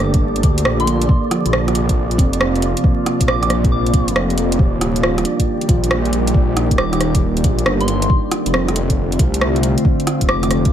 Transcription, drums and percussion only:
0.14 kick, closed hi-hat
0.36 closed hi-hat
0.43 kick, open hi-hat
0.58 closed hi-hat
0.65 cross-stick
0.80 closed hi-hat
0.87 open hi-hat
1.02 closed hi-hat
1.09 kick
1.31 cross-stick, open hi-hat
1.46 closed hi-hat
1.53 cross-stick
1.68 cross-stick, open hi-hat
1.75 open hi-hat
1.89 kick, closed hi-hat
2.11 closed hi-hat
2.18 kick, open hi-hat
2.33 closed hi-hat
2.41 cross-stick
2.56 closed hi-hat
2.62 open hi-hat
2.77 closed hi-hat
2.84 kick
3.06 cross-stick, open hi-hat
3.20 kick, closed hi-hat
3.28 cross-stick
3.43 cross-stick, closed hi-hat
3.50 cross-stick, open hi-hat
3.64 kick, open hi-hat
3.86 closed hi-hat
3.93 kick, open hi-hat
4.08 closed hi-hat
4.16 cross-stick
4.30 closed hi-hat
4.38 open hi-hat
4.52 closed hi-hat
4.59 kick
4.81 cross-stick, open hi-hat
4.96 closed hi-hat
5.03 cross-stick
5.18 cross-stick, open hi-hat
5.25 open hi-hat
5.39 kick, closed hi-hat
5.61 closed hi-hat
5.69 kick, open hi-hat
5.84 closed hi-hat
5.91 cross-stick
6.05 closed hi-hat
6.13 open hi-hat
6.27 closed hi-hat
6.34 kick
6.57 cross-stick, open hi-hat
6.71 kick, closed hi-hat
6.78 cross-stick
6.93 cross-stick, closed hi-hat
7.01 cross-stick, open hi-hat
7.15 kick, closed hi-hat
7.37 closed hi-hat
7.44 kick, open hi-hat
7.59 closed hi-hat
7.66 cross-stick
7.81 closed hi-hat
7.88 open hi-hat
8.02 closed hi-hat
8.10 kick
8.31 cross-stick, open hi-hat
8.46 closed hi-hat
8.54 cross-stick
8.68 cross-stick, open hi-hat
8.76 open hi-hat
8.90 kick, closed hi-hat
9.12 closed hi-hat
9.19 kick, open hi-hat
9.34 closed hi-hat
9.41 cross-stick
9.56 closed hi-hat
9.63 open hi-hat
9.78 closed hi-hat
9.85 kick
10.00 closed hi-hat
10.07 cross-stick, open hi-hat
10.21 kick, closed hi-hat
10.29 cross-stick
10.43 cross-stick, closed hi-hat
10.51 cross-stick, open hi-hat
10.65 kick, open hi-hat

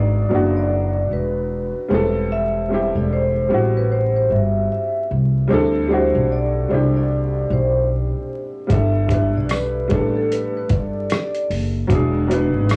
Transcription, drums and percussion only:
8.70 kick, closed hi-hat
9.09 kick, closed hi-hat
9.49 cross-stick, closed hi-hat, tambourine
9.90 kick, closed hi-hat
10.32 closed hi-hat
10.69 kick, closed hi-hat
11.10 cross-stick, closed hi-hat, tambourine
11.35 closed hi-hat
11.51 open hi-hat
11.90 kick, closed hi-hat
12.31 closed hi-hat
12.69 cross-stick, closed hi-hat, tambourine

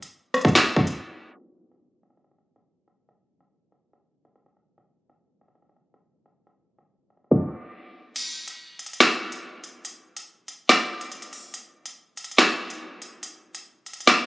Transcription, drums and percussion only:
0.02 closed hi-hat
0.34 cross-stick, closed hi-hat
0.41 kick, closed hi-hat
0.48 closed hi-hat
0.55 snare, clap, closed hi-hat
0.76 kick
0.87 closed hi-hat
1.40 closed hi-hat
1.72 closed hi-hat
2.03 closed hi-hat
2.10 closed hi-hat
2.17 closed hi-hat
2.24 closed hi-hat
2.31 closed hi-hat
2.38 closed hi-hat
2.56 closed hi-hat
2.88 closed hi-hat
3.09 closed hi-hat
3.41 closed hi-hat
3.72 closed hi-hat
3.93 closed hi-hat
4.25 closed hi-hat
4.36 closed hi-hat
4.46 closed hi-hat
4.57 closed hi-hat
4.78 closed hi-hat
5.10 closed hi-hat
5.41 closed hi-hat
5.48 closed hi-hat
5.55 closed hi-hat
5.62 closed hi-hat
5.69 closed hi-hat
5.76 closed hi-hat
5.94 closed hi-hat
6.26 closed hi-hat
6.47 closed hi-hat
6.79 closed hi-hat
7.10 closed hi-hat
7.17 closed hi-hat
7.24 closed hi-hat
7.31 kick, snare
8.16 closed hi-hat, crash
8.48 closed hi-hat
8.79 closed hi-hat
8.86 closed hi-hat
8.93 closed hi-hat
9.00 snare, clap, closed hi-hat
9.07 closed hi-hat
9.14 closed hi-hat
9.32 closed hi-hat
9.64 closed hi-hat
9.85 closed hi-hat
10.17 closed hi-hat
10.48 closed hi-hat
10.69 snare, clap, closed hi-hat
11.01 closed hi-hat
11.12 closed hi-hat
11.22 closed hi-hat
11.33 closed hi-hat, open hi-hat
11.54 closed hi-hat
11.86 closed hi-hat
12.17 closed hi-hat
12.24 closed hi-hat
12.31 closed hi-hat
12.38 snare, clap, closed hi-hat
12.46 closed hi-hat
12.53 closed hi-hat
12.70 closed hi-hat
13.02 closed hi-hat
13.23 closed hi-hat
13.55 closed hi-hat
13.86 closed hi-hat
13.93 closed hi-hat
14.00 closed hi-hat
14.07 snare, clap, closed hi-hat

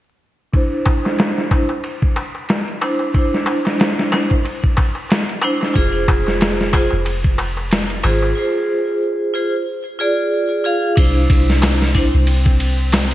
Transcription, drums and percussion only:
0.53 kick, ride, darbuka tek
0.85 kick, ride, darbuka tek
1.05 snare, darbuka tek
1.18 snare, ride, darbuka tek
1.38 snare
1.51 kick, open hi-hat, darbuka tek
1.69 darbuka tek
1.84 ride, darbuka tek
2.02 kick
2.16 ride, darbuka tek
2.35 darbuka tek
2.49 snare, ride, darbuka tek
2.68 ride
2.81 ride, darbuka tek
2.99 darbuka tek
3.14 kick, ride, darbuka tek
3.34 snare
3.46 ride, darbuka tek
3.65 snare, darbuka tek
3.79 snare, ride, darbuka tek
3.99 snare
4.12 snare, ride, darbuka tek
4.30 kick, darbuka tek
4.45 ride, darbuka tek
4.64 kick
4.77 kick, ride, darbuka tek
4.95 darbuka tek
5.09 snare, ride, darbuka tek
5.29 ride
5.42 ride, darbuka tek
5.61 snare, darbuka tek
5.74 kick, ride, darbuka tek
6.08 kick, ride, darbuka tek
6.26 snare, darbuka tek
6.41 snare, ride, darbuka tek
6.61 snare
6.73 kick, open hi-hat, darbuka tek
6.90 darbuka tek
7.05 ride, darbuka tek
7.24 kick
7.38 ride, darbuka tek
7.57 darbuka tek
7.71 snare, ride, darbuka tek
7.90 ride
8.04 ride, darbuka tek
8.22 darbuka tek
10.97 kick, ride
11.30 kick, ride
11.50 snare
11.62 snare, ride, darbuka tek
11.82 snare
11.95 kick, open hi-hat
12.27 ride
12.46 kick
12.60 ride
12.92 snare, ride, darbuka tek
13.11 ride

